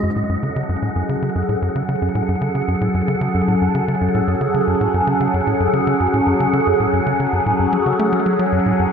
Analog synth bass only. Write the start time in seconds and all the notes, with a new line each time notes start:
0.03 F#2
0.16 A2
0.29 F#2
0.43 C#3
0.56 C#3
0.69 F#2
0.82 A2
0.96 F#2
1.09 C#3
1.22 C#3
1.36 F#2
1.49 A2
1.62 F#2
1.76 C#3
1.89 C#3
2.02 F#2
2.15 A2
2.29 F#2
2.41 C#3
2.55 C#3
2.68 F#2
2.81 A2
2.94 F#2
3.08 C#3
3.21 C#3
3.34 F#2
3.48 A2
3.62 F#2
3.75 C#3
3.88 C#3
4.01 F#2
4.15 A2
4.28 F#2
4.41 C#3
4.54 C#3
4.68 F#2
4.81 A2
4.94 F#2
5.07 C#3
5.21 C#3
5.34 F#2
5.47 A2
5.60 F#2
5.73 C#3
5.87 C#3
6.00 F#2
6.14 A2
6.27 F#2
6.40 C#3
6.53 C#3
6.67 F#2
6.80 A2
6.93 F#2
7.07 C#3
7.20 C#3
7.33 F#2
7.46 A2
7.59 F#2
7.73 F#3
7.86 C#3
7.99 A3
8.13 F#3
8.26 F#3
8.39 F#3
8.52 F#2
8.66 A2
8.79 F#2